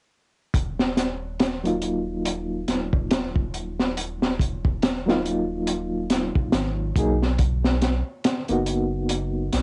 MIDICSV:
0, 0, Header, 1, 4, 480
1, 0, Start_track
1, 0, Key_signature, -6, "minor"
1, 0, Tempo, 857143
1, 301, Time_signature, 4, 2, 24, 8
1, 5388, End_track
2, 0, Start_track
2, 0, Title_t, "Reed electric piano"
2, 0, Program_c, 0, 4
2, 917, Note_on_c, 0, 54, 67
2, 923, Note_on_c, 0, 58, 58
2, 932, Note_on_c, 0, 63, 60
2, 936, Note_on_c, 0, 65, 70
2, 2806, Note_off_c, 0, 54, 0
2, 2809, Note_off_c, 0, 58, 0
2, 2813, Note_off_c, 0, 63, 0
2, 2815, Note_off_c, 0, 65, 0
2, 2834, Note_on_c, 0, 54, 74
2, 2843, Note_on_c, 0, 58, 69
2, 2849, Note_on_c, 0, 63, 68
2, 2857, Note_on_c, 0, 65, 85
2, 3874, Note_off_c, 0, 54, 0
2, 3878, Note_off_c, 0, 58, 0
2, 3881, Note_off_c, 0, 63, 0
2, 3885, Note_off_c, 0, 65, 0
2, 3904, Note_on_c, 0, 54, 72
2, 3906, Note_on_c, 0, 58, 64
2, 3910, Note_on_c, 0, 63, 62
2, 3913, Note_on_c, 0, 68, 79
2, 4064, Note_off_c, 0, 54, 0
2, 4066, Note_off_c, 0, 58, 0
2, 4068, Note_off_c, 0, 63, 0
2, 4069, Note_off_c, 0, 68, 0
2, 4756, Note_on_c, 0, 58, 67
2, 4762, Note_on_c, 0, 59, 59
2, 4768, Note_on_c, 0, 63, 56
2, 4774, Note_on_c, 0, 66, 72
2, 5388, Note_off_c, 0, 58, 0
2, 5388, Note_off_c, 0, 59, 0
2, 5388, Note_off_c, 0, 63, 0
2, 5388, Note_off_c, 0, 66, 0
2, 5388, End_track
3, 0, Start_track
3, 0, Title_t, "Sub bass"
3, 0, Program_c, 1, 38
3, 301, Note_on_c, 1, 27, 93
3, 1482, Note_off_c, 1, 27, 0
3, 1501, Note_on_c, 1, 27, 88
3, 3535, Note_off_c, 1, 27, 0
3, 3659, Note_on_c, 1, 32, 98
3, 3876, Note_off_c, 1, 32, 0
3, 3897, Note_on_c, 1, 35, 94
3, 4493, Note_off_c, 1, 35, 0
3, 4758, Note_on_c, 1, 30, 93
3, 5320, Note_off_c, 1, 30, 0
3, 5340, Note_on_c, 1, 35, 86
3, 5388, Note_off_c, 1, 35, 0
3, 5388, End_track
4, 0, Start_track
4, 0, Title_t, "Drums"
4, 301, Note_on_c, 9, 36, 91
4, 302, Note_on_c, 9, 42, 75
4, 357, Note_off_c, 9, 36, 0
4, 358, Note_off_c, 9, 42, 0
4, 444, Note_on_c, 9, 38, 50
4, 500, Note_off_c, 9, 38, 0
4, 543, Note_on_c, 9, 38, 50
4, 545, Note_on_c, 9, 42, 61
4, 599, Note_off_c, 9, 38, 0
4, 601, Note_off_c, 9, 42, 0
4, 782, Note_on_c, 9, 42, 76
4, 786, Note_on_c, 9, 38, 96
4, 838, Note_off_c, 9, 42, 0
4, 842, Note_off_c, 9, 38, 0
4, 926, Note_on_c, 9, 42, 36
4, 982, Note_off_c, 9, 42, 0
4, 1018, Note_on_c, 9, 42, 50
4, 1074, Note_off_c, 9, 42, 0
4, 1263, Note_on_c, 9, 42, 78
4, 1319, Note_off_c, 9, 42, 0
4, 1501, Note_on_c, 9, 42, 58
4, 1503, Note_on_c, 9, 38, 35
4, 1557, Note_off_c, 9, 42, 0
4, 1559, Note_off_c, 9, 38, 0
4, 1641, Note_on_c, 9, 36, 85
4, 1697, Note_off_c, 9, 36, 0
4, 1740, Note_on_c, 9, 42, 77
4, 1744, Note_on_c, 9, 38, 98
4, 1796, Note_off_c, 9, 42, 0
4, 1800, Note_off_c, 9, 38, 0
4, 1880, Note_on_c, 9, 36, 86
4, 1936, Note_off_c, 9, 36, 0
4, 1983, Note_on_c, 9, 42, 58
4, 2039, Note_off_c, 9, 42, 0
4, 2125, Note_on_c, 9, 38, 43
4, 2181, Note_off_c, 9, 38, 0
4, 2224, Note_on_c, 9, 42, 75
4, 2280, Note_off_c, 9, 42, 0
4, 2364, Note_on_c, 9, 38, 47
4, 2420, Note_off_c, 9, 38, 0
4, 2461, Note_on_c, 9, 36, 79
4, 2469, Note_on_c, 9, 42, 57
4, 2517, Note_off_c, 9, 36, 0
4, 2525, Note_off_c, 9, 42, 0
4, 2602, Note_on_c, 9, 36, 86
4, 2658, Note_off_c, 9, 36, 0
4, 2701, Note_on_c, 9, 42, 71
4, 2706, Note_on_c, 9, 38, 90
4, 2757, Note_off_c, 9, 42, 0
4, 2762, Note_off_c, 9, 38, 0
4, 2848, Note_on_c, 9, 38, 45
4, 2904, Note_off_c, 9, 38, 0
4, 2943, Note_on_c, 9, 42, 55
4, 2999, Note_off_c, 9, 42, 0
4, 3176, Note_on_c, 9, 42, 72
4, 3232, Note_off_c, 9, 42, 0
4, 3416, Note_on_c, 9, 42, 65
4, 3419, Note_on_c, 9, 38, 50
4, 3472, Note_off_c, 9, 42, 0
4, 3475, Note_off_c, 9, 38, 0
4, 3559, Note_on_c, 9, 36, 86
4, 3615, Note_off_c, 9, 36, 0
4, 3653, Note_on_c, 9, 38, 99
4, 3655, Note_on_c, 9, 42, 77
4, 3709, Note_off_c, 9, 38, 0
4, 3711, Note_off_c, 9, 42, 0
4, 3895, Note_on_c, 9, 36, 87
4, 3898, Note_on_c, 9, 42, 61
4, 3951, Note_off_c, 9, 36, 0
4, 3954, Note_off_c, 9, 42, 0
4, 4045, Note_on_c, 9, 38, 32
4, 4101, Note_off_c, 9, 38, 0
4, 4135, Note_on_c, 9, 42, 70
4, 4138, Note_on_c, 9, 36, 91
4, 4191, Note_off_c, 9, 42, 0
4, 4194, Note_off_c, 9, 36, 0
4, 4281, Note_on_c, 9, 38, 49
4, 4337, Note_off_c, 9, 38, 0
4, 4376, Note_on_c, 9, 42, 60
4, 4380, Note_on_c, 9, 38, 55
4, 4432, Note_off_c, 9, 42, 0
4, 4436, Note_off_c, 9, 38, 0
4, 4615, Note_on_c, 9, 42, 80
4, 4619, Note_on_c, 9, 38, 94
4, 4671, Note_off_c, 9, 42, 0
4, 4675, Note_off_c, 9, 38, 0
4, 4750, Note_on_c, 9, 42, 39
4, 4806, Note_off_c, 9, 42, 0
4, 4851, Note_on_c, 9, 42, 57
4, 4907, Note_off_c, 9, 42, 0
4, 5092, Note_on_c, 9, 42, 79
4, 5148, Note_off_c, 9, 42, 0
4, 5335, Note_on_c, 9, 42, 60
4, 5336, Note_on_c, 9, 38, 31
4, 5388, Note_off_c, 9, 38, 0
4, 5388, Note_off_c, 9, 42, 0
4, 5388, End_track
0, 0, End_of_file